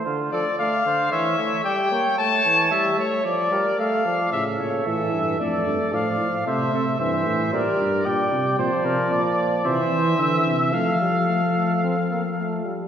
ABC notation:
X:1
M:4/4
L:1/8
Q:1/4=112
K:Dm
V:1 name="Trumpet"
z d f2 e2 g2 | a2 e ^c d2 f2 | e ^c e2 d2 f2 | e2 e2 d2 g2 |
[K:F] d4 e4 | f6- f z |]
V:2 name="Flugelhorn"
F A d c ^c c d c | ^c3 z d B A d | A4 A2 d2 | c A c2 B2 d2 |
[K:F] c B d2 c2 e2 | A6- A z |]
V:3 name="Trombone" clef=bass
D, F, A, D, E, A, G, B, | A, E, G, A, F, G, A, F, | ^C,2 E,2 A,2 F,2 | A,2 E,2 G,2 G,2 |
[K:F] F,4 E,4 | A, G, A, A, C B, A, G, |]
V:4 name="Tuba" clef=bass
z8 | z8 | A,, B,, A,, G,, F,, G,, A,, A,, | C, C, G,, A,, B,, G,, B,, C, |
[K:F] B,, C, B,,2 C, E, D, C, | F,6- F, z |]